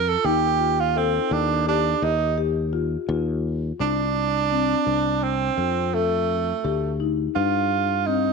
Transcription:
0.00 0.16 F2 medium
0.00 0.10 A#4 loud
0.09 0.27 A4 medium
0.24 1.18 D#2 medium
0.24 0.48 D#4 medium
0.24 0.81 G4 loud
0.60 0.84 F4 medium
0.80 0.99 F4 medium
0.96 1.34 C4 medium
0.96 1.44 A4 medium
1.31 1.93 D#2 medium
1.31 1.67 D4 medium
1.67 2.05 D4 medium
1.67 2.15 G4 medium
2.02 2.96 D#2 medium
2.02 2.38 D#4 medium
2.38 2.62 G4 medium
2.73 2.97 F4 medium
3.09 3.71 D#2 medium
3.09 3.57 F4 medium
3.80 4.73 C2 medium
3.80 4.28 D4 medium
3.80 5.25 D4 loud
4.51 4.75 C4 medium
4.86 5.49 C2 medium
4.86 5.34 D4 medium
5.23 5.96 C4 medium
5.57 6.51 F2 medium
5.57 5.81 F4 medium
5.93 7.01 A3 medium
5.93 6.41 A4 medium
6.64 7.27 D2 medium
6.64 6.88 G4 medium
7.00 7.24 D#4 medium
7.35 8.30 G2 medium
7.35 7.83 D4 medium
7.35 8.08 F4 medium
8.06 8.31 C4 medium
8.06 8.33 D#4 medium

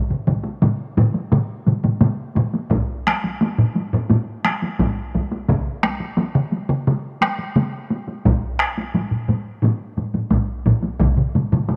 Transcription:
0.10 taiko low-mid medium
0.10 taiko mid medium
0.27 taiko low-mid medium
0.27 taiko mid loud
0.27 taiko high medium
0.44 taiko high medium
0.62 taiko low-mid medium
0.62 taiko mid medium
0.62 taiko high medium
0.97 taiko low-mid loud
0.97 taiko mid medium
0.97 taiko high soft
1.14 taiko high soft
1.32 taiko low-mid medium
1.32 taiko mid loud
1.32 taiko high medium
1.66 taiko low-mid medium
1.66 taiko mid medium
1.66 taiko high medium
1.84 taiko low-mid medium
1.84 taiko mid medium
1.84 taiko high soft
2.01 taiko low-mid medium
2.01 taiko mid medium
2.01 taiko high medium
2.36 taiko low-mid medium
2.36 taiko mid medium
2.36 taiko high medium
2.54 taiko high medium
2.71 taiko medium
2.71 taiko low-mid medium
2.71 taiko high medium
3.07 taiko rim medium
3.07 taiko high medium
3.24 taiko high medium
3.41 taiko high medium
3.58 taiko low-mid loud
3.75 taiko high medium
3.93 taiko low-mid loud
4.10 taiko low-mid medium
4.10 taiko high medium
4.45 taiko rim medium
4.45 taiko high soft
4.62 taiko high soft
4.79 taiko medium
4.79 taiko low-mid medium
4.79 taiko high medium
5.15 taiko medium
5.15 taiko high medium
5.32 taiko high medium
5.49 taiko loud
5.49 taiko mid loud
5.49 taiko high medium
5.83 taiko rim medium
5.83 taiko high medium
6.00 taiko high medium
6.18 taiko high medium
6.35 taiko mid loud
6.52 taiko high soft
6.70 taiko mid medium
6.87 taiko mid medium
6.87 taiko high medium
7.22 taiko rim medium
7.22 taiko high medium
7.39 taiko high soft
7.56 taiko mid loud
7.56 taiko high medium
7.91 taiko high medium
8.08 taiko high medium
8.25 taiko loud
8.25 taiko low-mid medium
8.25 taiko high medium
8.60 taiko rim medium
8.78 taiko high medium
8.94 taiko low-mid medium
8.94 taiko high medium
9.11 taiko low-mid medium
9.28 taiko low-mid medium
9.28 taiko high soft
9.62 taiko low-mid medium
9.62 taiko high medium
9.97 taiko low-mid medium
9.97 taiko high soft
10.14 taiko low-mid medium
10.14 taiko high soft
10.31 taiko medium
10.31 taiko low-mid medium
10.31 taiko high medium
10.66 taiko medium
10.66 taiko low-mid loud
10.66 taiko high medium
10.83 taiko high medium
11.00 taiko medium
11.00 taiko low-mid medium
11.00 taiko mid medium
11.00 taiko high medium
11.17 taiko low-mid medium
11.17 taiko mid medium
11.35 taiko low-mid medium
11.35 taiko mid medium
11.35 taiko high medium
11.52 taiko low-mid medium
11.52 taiko mid medium
11.52 taiko high medium
11.69 taiko low-mid medium
11.69 taiko mid medium
11.69 taiko high medium

